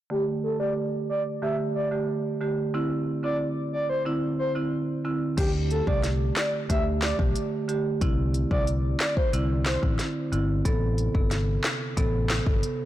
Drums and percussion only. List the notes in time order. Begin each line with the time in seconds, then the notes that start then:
5.38 kick, closed hi-hat, crash
5.71 closed hi-hat
5.87 kick
6.04 snare, closed hi-hat
6.36 snare, clap, closed hi-hat
6.70 kick, closed hi-hat
7.02 snare, clap, closed hi-hat
7.19 kick
7.36 closed hi-hat
7.69 closed hi-hat
8.01 kick, closed hi-hat
8.34 closed hi-hat
8.51 kick
8.67 closed hi-hat
9.00 snare, clap, closed hi-hat
9.17 kick
9.33 closed hi-hat
9.66 snare, clap, closed hi-hat
9.83 kick
9.99 snare, closed hi-hat
10.33 closed hi-hat
10.65 kick, closed hi-hat
10.98 closed hi-hat
11.15 kick
11.31 snare, closed hi-hat
11.64 snare, clap, closed hi-hat
11.97 kick, closed hi-hat
12.30 snare, clap, closed hi-hat
12.47 kick
12.63 closed hi-hat